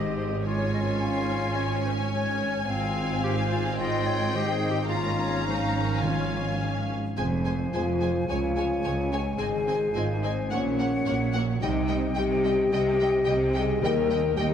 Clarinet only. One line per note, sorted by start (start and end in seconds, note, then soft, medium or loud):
0.00 0.46 G4 medium
0.47 2.36 F4 medium
2.69 3.20 C4 medium
3.24 3.36 G4 medium
3.52 3.64 F4 medium
3.79 4.38 F4 medium
4.36 4.53 G4 medium
4.52 4.70 G#4 medium
4.71 4.79 G4 medium
4.87 5.43 F4 medium
5.45 6.03 D#4 medium
6.02 6.60 F4 medium
7.19 8.29 C5 soft
8.28 9.40 C#5 soft
9.42 10.53 C5 medium
10.51 11.62 C#5 medium
11.63 14.54 D#5 medium